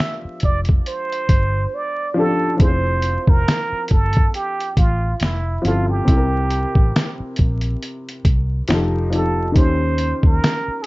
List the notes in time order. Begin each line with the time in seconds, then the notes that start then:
Already playing: F3 D4 G4 A4 E5
0.00 finger snap, snare, closed hi-hat
0.25 muted fingered electric bass stroke
0.40 F1, kick, closed hi-hat
0.44 D5
0.65 kick, closed hi-hat
0.86 C5, closed hi-hat
1.12 closed hi-hat
1.29 G1, kick, closed hi-hat
1.75 D5
2.14 F3 D4 G4 A4
2.20 A4
2.57 F1 F3 C4 E4, kick, closed hi-hat
2.61 G#4 C5
2.69 C5
3.02 closed hi-hat
3.27 F1 A#4, kick
3.48 finger snap, snare, closed hi-hat
3.72 muted fingered electric bass stroke
3.88 G1 A4, kick, closed hi-hat
4.13 kick, closed hi-hat
4.34 G4, closed hi-hat
4.60 closed hi-hat
4.77 A1 F4, kick, closed hi-hat
5.20 F1 E4, finger snap, snare, closed hi-hat
5.62 G1 F3 C4 E4 F4, closed hi-hat
5.67 A4
5.90 G4
6.05 C2 C3 C4 E4, kick, closed hi-hat
6.10 A4
6.17 A#4
6.51 closed hi-hat
6.75 A1, kick
6.96 finger snap, snare, closed hi-hat
7.20 muted fingered electric bass stroke
7.36 A#1, kick, closed hi-hat
7.61 closed hi-hat
7.83 closed hi-hat
8.09 closed hi-hat
8.25 C2, kick, closed hi-hat
8.68 F1 F3 D#4, finger snap, snare, closed hi-hat
8.72 G4 A4
9.10 F3 D#4 G4, closed hi-hat
9.15 A4
9.52 D#3 D#4 G4, kick, closed hi-hat
9.56 D#2 C#4 C5
9.98 closed hi-hat
10.23 D#2 A#4, kick
10.44 finger snap, snare, closed hi-hat
10.68 muted fingered electric bass stroke
10.82 G#4